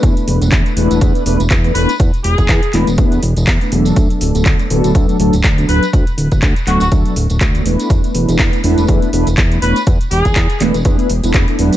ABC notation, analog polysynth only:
X:1
M:4/4
L:1/16
Q:"Swing 16ths" 1/4=122
K:Emix
V:1 name="Analog polysynth"
[A,B,DEB]6 [A,B,DEB]2 [A,B,DEB]2 [A,B,DEB] z2 [A,B,DEB] [A,B,DEc] z | z6 [A,B,DEB] z [A,B,DEB]2 z3 [A,B,DEB] [F,A,B,DA]2- | [F,A,B,DA]6 [F,A,B,DA]2 [F,A,B,DA]2 [F,A,B,DA] z2 [F,A,B,DA] [F,A,B,DB] z | z6 [F,A,B,DA] z [F,A,B,DA]2 z3 [F,A,B,DA] [A,B,DEB]2- |
[A,B,DEB]6 [A,B,DEB]2 [A,B,DEB]2 [A,B,DEB] z2 [A,B,DEB] [A,B,DEc] z | z6 [A,B,DEB] z [A,B,DEB]2 z [A,B,DEB]2 [A,B,DEA] [F,A,B,DB]2 |]